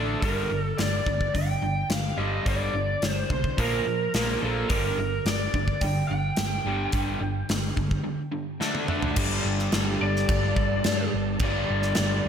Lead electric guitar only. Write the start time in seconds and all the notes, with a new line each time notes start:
Already playing: A4
0.21 A#4
0.64 A4
0.78 D5
1.34 G5
1.91 F5
2.18 D#5
2.47 D5
3.09 C5
3.32 C5
3.59 A#4
4.41 A4
4.70 A#4
5.26 D5
5.81 G5
6.08 G5
10.02 D5
11.44 D5